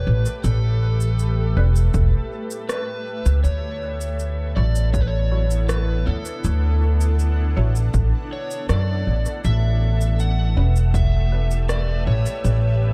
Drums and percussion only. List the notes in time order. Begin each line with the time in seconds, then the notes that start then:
0.26 cabasa
0.44 cabasa
1.01 cabasa
1.19 cabasa
1.76 cabasa
1.94 kick, cabasa
2.51 cabasa
2.69 cross-stick, cabasa
3.26 cabasa
3.44 cabasa
4.01 cabasa
4.19 cabasa
4.76 cabasa
4.94 kick, cabasa
5.51 cabasa
5.69 cross-stick, cabasa
6.25 cabasa
6.44 cabasa
7.01 cabasa
7.19 cabasa
7.76 cabasa
7.94 kick, cabasa
8.51 cabasa
8.69 cross-stick, cabasa
9.26 cabasa
9.44 cabasa
10.01 cabasa
10.19 cabasa
10.76 cabasa
10.94 kick, cabasa
11.51 cabasa
11.69 cross-stick, cabasa
12.26 cabasa
12.45 cabasa